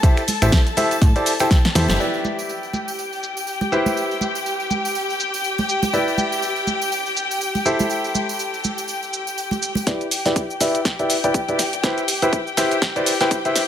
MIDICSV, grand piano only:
0, 0, Header, 1, 2, 480
1, 0, Start_track
1, 0, Key_signature, 1, "major"
1, 0, Tempo, 491803
1, 32, Time_signature, 4, 2, 24, 8
1, 13348, End_track
2, 0, Start_track
2, 0, Title_t, "Grand piano"
2, 0, Program_c, 0, 0
2, 31, Note_on_c, 0, 64, 89
2, 31, Note_on_c, 0, 67, 83
2, 31, Note_on_c, 0, 69, 77
2, 31, Note_on_c, 0, 72, 81
2, 31, Note_on_c, 0, 76, 97
2, 198, Note_off_c, 0, 64, 0
2, 198, Note_off_c, 0, 67, 0
2, 198, Note_off_c, 0, 69, 0
2, 198, Note_off_c, 0, 72, 0
2, 198, Note_off_c, 0, 76, 0
2, 409, Note_on_c, 0, 64, 98
2, 409, Note_on_c, 0, 69, 90
2, 409, Note_on_c, 0, 72, 89
2, 409, Note_on_c, 0, 76, 111
2, 410, Note_on_c, 0, 67, 94
2, 550, Note_off_c, 0, 64, 0
2, 550, Note_off_c, 0, 67, 0
2, 550, Note_off_c, 0, 69, 0
2, 550, Note_off_c, 0, 72, 0
2, 550, Note_off_c, 0, 76, 0
2, 751, Note_on_c, 0, 64, 95
2, 751, Note_on_c, 0, 67, 84
2, 751, Note_on_c, 0, 72, 84
2, 751, Note_on_c, 0, 76, 107
2, 752, Note_on_c, 0, 69, 86
2, 918, Note_off_c, 0, 64, 0
2, 918, Note_off_c, 0, 67, 0
2, 918, Note_off_c, 0, 69, 0
2, 918, Note_off_c, 0, 72, 0
2, 918, Note_off_c, 0, 76, 0
2, 1130, Note_on_c, 0, 64, 77
2, 1130, Note_on_c, 0, 67, 71
2, 1130, Note_on_c, 0, 69, 75
2, 1130, Note_on_c, 0, 72, 73
2, 1130, Note_on_c, 0, 74, 92
2, 1270, Note_off_c, 0, 64, 0
2, 1270, Note_off_c, 0, 67, 0
2, 1270, Note_off_c, 0, 69, 0
2, 1270, Note_off_c, 0, 72, 0
2, 1270, Note_off_c, 0, 74, 0
2, 1370, Note_on_c, 0, 64, 91
2, 1370, Note_on_c, 0, 67, 82
2, 1370, Note_on_c, 0, 69, 80
2, 1370, Note_on_c, 0, 72, 84
2, 1370, Note_on_c, 0, 79, 100
2, 1510, Note_off_c, 0, 64, 0
2, 1510, Note_off_c, 0, 67, 0
2, 1510, Note_off_c, 0, 69, 0
2, 1510, Note_off_c, 0, 72, 0
2, 1510, Note_off_c, 0, 79, 0
2, 1711, Note_on_c, 0, 64, 86
2, 1711, Note_on_c, 0, 67, 78
2, 1711, Note_on_c, 0, 69, 80
2, 1711, Note_on_c, 0, 72, 82
2, 1711, Note_on_c, 0, 76, 97
2, 1921, Note_off_c, 0, 64, 0
2, 1921, Note_off_c, 0, 67, 0
2, 1921, Note_off_c, 0, 69, 0
2, 1921, Note_off_c, 0, 72, 0
2, 1921, Note_off_c, 0, 76, 0
2, 1951, Note_on_c, 0, 64, 74
2, 1951, Note_on_c, 0, 67, 66
2, 1951, Note_on_c, 0, 71, 64
2, 1951, Note_on_c, 0, 74, 68
2, 1951, Note_on_c, 0, 76, 81
2, 3607, Note_off_c, 0, 64, 0
2, 3607, Note_off_c, 0, 67, 0
2, 3607, Note_off_c, 0, 71, 0
2, 3607, Note_off_c, 0, 74, 0
2, 3607, Note_off_c, 0, 76, 0
2, 3631, Note_on_c, 0, 72, 66
2, 3632, Note_on_c, 0, 64, 78
2, 3632, Note_on_c, 0, 67, 66
2, 3632, Note_on_c, 0, 71, 70
2, 3632, Note_on_c, 0, 76, 83
2, 5767, Note_off_c, 0, 64, 0
2, 5767, Note_off_c, 0, 67, 0
2, 5767, Note_off_c, 0, 71, 0
2, 5767, Note_off_c, 0, 72, 0
2, 5767, Note_off_c, 0, 76, 0
2, 5791, Note_on_c, 0, 64, 71
2, 5791, Note_on_c, 0, 67, 68
2, 5791, Note_on_c, 0, 71, 65
2, 5791, Note_on_c, 0, 74, 67
2, 5791, Note_on_c, 0, 76, 82
2, 7447, Note_off_c, 0, 64, 0
2, 7447, Note_off_c, 0, 67, 0
2, 7447, Note_off_c, 0, 71, 0
2, 7447, Note_off_c, 0, 74, 0
2, 7447, Note_off_c, 0, 76, 0
2, 7471, Note_on_c, 0, 64, 76
2, 7471, Note_on_c, 0, 67, 71
2, 7471, Note_on_c, 0, 69, 69
2, 7471, Note_on_c, 0, 76, 85
2, 7472, Note_on_c, 0, 72, 68
2, 9607, Note_off_c, 0, 64, 0
2, 9607, Note_off_c, 0, 67, 0
2, 9607, Note_off_c, 0, 69, 0
2, 9607, Note_off_c, 0, 72, 0
2, 9607, Note_off_c, 0, 76, 0
2, 9631, Note_on_c, 0, 64, 88
2, 9631, Note_on_c, 0, 67, 75
2, 9631, Note_on_c, 0, 74, 78
2, 9632, Note_on_c, 0, 71, 78
2, 9632, Note_on_c, 0, 76, 95
2, 9798, Note_off_c, 0, 64, 0
2, 9798, Note_off_c, 0, 67, 0
2, 9798, Note_off_c, 0, 74, 0
2, 9798, Note_off_c, 0, 76, 0
2, 9799, Note_off_c, 0, 71, 0
2, 10010, Note_on_c, 0, 64, 99
2, 10010, Note_on_c, 0, 67, 90
2, 10010, Note_on_c, 0, 71, 90
2, 10010, Note_on_c, 0, 74, 89
2, 10010, Note_on_c, 0, 76, 105
2, 10150, Note_off_c, 0, 64, 0
2, 10150, Note_off_c, 0, 71, 0
2, 10150, Note_off_c, 0, 74, 0
2, 10151, Note_off_c, 0, 67, 0
2, 10151, Note_off_c, 0, 76, 0
2, 10352, Note_on_c, 0, 64, 92
2, 10352, Note_on_c, 0, 67, 85
2, 10352, Note_on_c, 0, 71, 86
2, 10352, Note_on_c, 0, 74, 85
2, 10352, Note_on_c, 0, 76, 104
2, 10519, Note_off_c, 0, 64, 0
2, 10519, Note_off_c, 0, 67, 0
2, 10519, Note_off_c, 0, 71, 0
2, 10519, Note_off_c, 0, 74, 0
2, 10519, Note_off_c, 0, 76, 0
2, 10730, Note_on_c, 0, 64, 78
2, 10730, Note_on_c, 0, 67, 74
2, 10730, Note_on_c, 0, 71, 70
2, 10730, Note_on_c, 0, 74, 73
2, 10730, Note_on_c, 0, 76, 82
2, 10870, Note_off_c, 0, 74, 0
2, 10871, Note_off_c, 0, 64, 0
2, 10871, Note_off_c, 0, 67, 0
2, 10871, Note_off_c, 0, 71, 0
2, 10871, Note_off_c, 0, 76, 0
2, 10970, Note_on_c, 0, 67, 81
2, 10970, Note_on_c, 0, 71, 82
2, 10970, Note_on_c, 0, 74, 81
2, 10971, Note_on_c, 0, 64, 91
2, 10971, Note_on_c, 0, 79, 99
2, 11110, Note_off_c, 0, 74, 0
2, 11111, Note_off_c, 0, 64, 0
2, 11111, Note_off_c, 0, 67, 0
2, 11111, Note_off_c, 0, 71, 0
2, 11111, Note_off_c, 0, 79, 0
2, 11210, Note_on_c, 0, 64, 81
2, 11210, Note_on_c, 0, 67, 79
2, 11210, Note_on_c, 0, 71, 75
2, 11210, Note_on_c, 0, 74, 76
2, 11210, Note_on_c, 0, 76, 91
2, 11299, Note_off_c, 0, 64, 0
2, 11299, Note_off_c, 0, 67, 0
2, 11299, Note_off_c, 0, 71, 0
2, 11299, Note_off_c, 0, 74, 0
2, 11299, Note_off_c, 0, 76, 0
2, 11551, Note_on_c, 0, 64, 86
2, 11551, Note_on_c, 0, 67, 80
2, 11551, Note_on_c, 0, 71, 78
2, 11551, Note_on_c, 0, 72, 80
2, 11551, Note_on_c, 0, 76, 91
2, 11718, Note_off_c, 0, 64, 0
2, 11718, Note_off_c, 0, 67, 0
2, 11718, Note_off_c, 0, 71, 0
2, 11718, Note_off_c, 0, 72, 0
2, 11718, Note_off_c, 0, 76, 0
2, 11930, Note_on_c, 0, 64, 99
2, 11930, Note_on_c, 0, 67, 88
2, 11930, Note_on_c, 0, 71, 91
2, 11930, Note_on_c, 0, 72, 85
2, 11930, Note_on_c, 0, 76, 108
2, 12070, Note_off_c, 0, 64, 0
2, 12070, Note_off_c, 0, 67, 0
2, 12070, Note_off_c, 0, 71, 0
2, 12070, Note_off_c, 0, 72, 0
2, 12070, Note_off_c, 0, 76, 0
2, 12271, Note_on_c, 0, 64, 91
2, 12271, Note_on_c, 0, 67, 86
2, 12271, Note_on_c, 0, 71, 85
2, 12271, Note_on_c, 0, 72, 85
2, 12271, Note_on_c, 0, 76, 103
2, 12438, Note_off_c, 0, 64, 0
2, 12438, Note_off_c, 0, 67, 0
2, 12438, Note_off_c, 0, 71, 0
2, 12438, Note_off_c, 0, 72, 0
2, 12438, Note_off_c, 0, 76, 0
2, 12649, Note_on_c, 0, 64, 77
2, 12649, Note_on_c, 0, 67, 73
2, 12649, Note_on_c, 0, 71, 74
2, 12649, Note_on_c, 0, 72, 75
2, 12649, Note_on_c, 0, 74, 83
2, 12790, Note_off_c, 0, 64, 0
2, 12790, Note_off_c, 0, 67, 0
2, 12790, Note_off_c, 0, 71, 0
2, 12790, Note_off_c, 0, 72, 0
2, 12790, Note_off_c, 0, 74, 0
2, 12889, Note_on_c, 0, 64, 93
2, 12889, Note_on_c, 0, 67, 82
2, 12889, Note_on_c, 0, 71, 84
2, 12889, Note_on_c, 0, 72, 82
2, 12889, Note_on_c, 0, 79, 99
2, 13030, Note_off_c, 0, 64, 0
2, 13030, Note_off_c, 0, 67, 0
2, 13030, Note_off_c, 0, 71, 0
2, 13030, Note_off_c, 0, 72, 0
2, 13030, Note_off_c, 0, 79, 0
2, 13129, Note_on_c, 0, 76, 93
2, 13130, Note_on_c, 0, 64, 85
2, 13130, Note_on_c, 0, 67, 78
2, 13130, Note_on_c, 0, 71, 76
2, 13130, Note_on_c, 0, 72, 78
2, 13270, Note_off_c, 0, 64, 0
2, 13270, Note_off_c, 0, 67, 0
2, 13270, Note_off_c, 0, 71, 0
2, 13270, Note_off_c, 0, 72, 0
2, 13270, Note_off_c, 0, 76, 0
2, 13348, End_track
0, 0, End_of_file